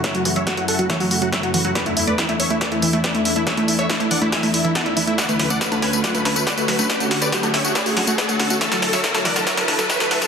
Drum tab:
HH |xxoxxxoxxooxxxox|xxoxxxoxxxoxxxox|xxoxxxoxxooxxxox|xxoxxxoxxxoxxxox|
TB |----------------|----------------|----------------|xx-xxx-xxx-xxx-x|
SD |o---o---o---o---|o---o---o---o---|o---o---o---o---|o-o-o-o-o-o-o-o-|
CG |----------------|----------------|----------------|-----o----o----o|
BD |o---o---o---o---|o---o---o---o---|o---o---o---o---|o---o---o---o---|

HH |xxoxxxoxxooxxxox|xxoxxxoxxxo-xxox|
TB |xx-xxx-xxx-xxx-x|xx-xxx-xxx-xxx-x|
SD |o-o-o-o-o-o-o-o-|oooooooooooooooo|
CG |-----o----o-----|-----o----o----o|
BD |o---o---o---o---|o---o---o---o---|